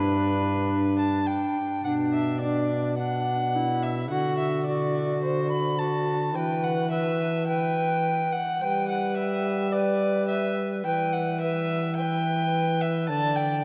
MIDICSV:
0, 0, Header, 1, 4, 480
1, 0, Start_track
1, 0, Tempo, 569260
1, 1550, Time_signature, 4, 2, 24, 8
1, 2980, Tempo, 562324
1, 11609, End_track
2, 0, Start_track
2, 0, Title_t, "Violin"
2, 0, Program_c, 0, 40
2, 0, Note_on_c, 0, 71, 92
2, 805, Note_off_c, 0, 71, 0
2, 835, Note_on_c, 0, 81, 78
2, 1067, Note_on_c, 0, 79, 71
2, 1079, Note_off_c, 0, 81, 0
2, 1548, Note_off_c, 0, 79, 0
2, 1553, Note_on_c, 0, 78, 78
2, 1620, Note_off_c, 0, 78, 0
2, 1793, Note_on_c, 0, 76, 71
2, 2025, Note_off_c, 0, 76, 0
2, 2029, Note_on_c, 0, 74, 75
2, 2496, Note_off_c, 0, 74, 0
2, 2507, Note_on_c, 0, 78, 86
2, 3229, Note_on_c, 0, 76, 74
2, 3242, Note_off_c, 0, 78, 0
2, 3462, Note_off_c, 0, 76, 0
2, 3468, Note_on_c, 0, 78, 81
2, 3697, Note_off_c, 0, 78, 0
2, 3703, Note_on_c, 0, 76, 76
2, 3939, Note_off_c, 0, 76, 0
2, 3944, Note_on_c, 0, 74, 78
2, 4416, Note_off_c, 0, 74, 0
2, 4425, Note_on_c, 0, 72, 76
2, 4661, Note_off_c, 0, 72, 0
2, 4666, Note_on_c, 0, 83, 86
2, 4901, Note_on_c, 0, 81, 72
2, 4914, Note_off_c, 0, 83, 0
2, 5385, Note_on_c, 0, 79, 84
2, 5398, Note_off_c, 0, 81, 0
2, 5629, Note_on_c, 0, 78, 78
2, 5642, Note_off_c, 0, 79, 0
2, 5855, Note_off_c, 0, 78, 0
2, 5860, Note_on_c, 0, 76, 80
2, 6332, Note_off_c, 0, 76, 0
2, 6343, Note_on_c, 0, 79, 93
2, 7066, Note_on_c, 0, 78, 84
2, 7079, Note_off_c, 0, 79, 0
2, 7311, Note_on_c, 0, 79, 91
2, 7324, Note_off_c, 0, 78, 0
2, 7542, Note_off_c, 0, 79, 0
2, 7547, Note_on_c, 0, 78, 80
2, 7779, Note_off_c, 0, 78, 0
2, 7792, Note_on_c, 0, 76, 88
2, 8260, Note_on_c, 0, 74, 82
2, 8273, Note_off_c, 0, 76, 0
2, 8732, Note_off_c, 0, 74, 0
2, 8737, Note_on_c, 0, 76, 78
2, 8973, Note_off_c, 0, 76, 0
2, 9225, Note_on_c, 0, 79, 95
2, 9460, Note_on_c, 0, 78, 83
2, 9473, Note_off_c, 0, 79, 0
2, 9694, Note_off_c, 0, 78, 0
2, 9699, Note_on_c, 0, 76, 94
2, 10170, Note_off_c, 0, 76, 0
2, 10177, Note_on_c, 0, 79, 98
2, 10897, Note_on_c, 0, 76, 86
2, 10910, Note_off_c, 0, 79, 0
2, 11134, Note_off_c, 0, 76, 0
2, 11139, Note_on_c, 0, 81, 97
2, 11365, Note_on_c, 0, 79, 85
2, 11378, Note_off_c, 0, 81, 0
2, 11609, Note_off_c, 0, 79, 0
2, 11609, End_track
3, 0, Start_track
3, 0, Title_t, "Recorder"
3, 0, Program_c, 1, 74
3, 0, Note_on_c, 1, 62, 67
3, 1315, Note_off_c, 1, 62, 0
3, 1562, Note_on_c, 1, 62, 54
3, 2000, Note_off_c, 1, 62, 0
3, 2045, Note_on_c, 1, 62, 54
3, 2504, Note_off_c, 1, 62, 0
3, 2507, Note_on_c, 1, 62, 59
3, 2992, Note_on_c, 1, 64, 49
3, 3004, Note_off_c, 1, 62, 0
3, 3472, Note_on_c, 1, 66, 48
3, 3485, Note_off_c, 1, 64, 0
3, 3942, Note_off_c, 1, 66, 0
3, 3947, Note_on_c, 1, 66, 58
3, 4888, Note_off_c, 1, 66, 0
3, 4904, Note_on_c, 1, 66, 54
3, 5375, Note_on_c, 1, 72, 48
3, 5388, Note_off_c, 1, 66, 0
3, 5409, Note_on_c, 1, 71, 52
3, 5418, Note_off_c, 1, 72, 0
3, 5846, Note_off_c, 1, 71, 0
3, 5851, Note_on_c, 1, 71, 60
3, 6327, Note_off_c, 1, 71, 0
3, 6342, Note_on_c, 1, 71, 59
3, 7050, Note_off_c, 1, 71, 0
3, 7306, Note_on_c, 1, 72, 52
3, 7337, Note_on_c, 1, 71, 56
3, 7345, Note_off_c, 1, 72, 0
3, 8227, Note_off_c, 1, 71, 0
3, 8268, Note_on_c, 1, 71, 67
3, 9204, Note_off_c, 1, 71, 0
3, 9230, Note_on_c, 1, 71, 59
3, 9671, Note_off_c, 1, 71, 0
3, 9715, Note_on_c, 1, 71, 64
3, 10178, Note_off_c, 1, 71, 0
3, 10190, Note_on_c, 1, 72, 62
3, 10224, Note_on_c, 1, 71, 68
3, 10232, Note_off_c, 1, 72, 0
3, 11140, Note_on_c, 1, 74, 62
3, 11153, Note_off_c, 1, 71, 0
3, 11609, Note_off_c, 1, 74, 0
3, 11609, End_track
4, 0, Start_track
4, 0, Title_t, "Trombone"
4, 0, Program_c, 2, 57
4, 0, Note_on_c, 2, 43, 68
4, 1314, Note_off_c, 2, 43, 0
4, 1546, Note_on_c, 2, 47, 61
4, 3459, Note_on_c, 2, 50, 65
4, 3472, Note_off_c, 2, 47, 0
4, 5386, Note_on_c, 2, 52, 62
4, 5398, Note_off_c, 2, 50, 0
4, 7065, Note_off_c, 2, 52, 0
4, 7298, Note_on_c, 2, 55, 70
4, 9183, Note_off_c, 2, 55, 0
4, 9222, Note_on_c, 2, 52, 67
4, 11138, Note_on_c, 2, 50, 70
4, 11151, Note_off_c, 2, 52, 0
4, 11609, Note_off_c, 2, 50, 0
4, 11609, End_track
0, 0, End_of_file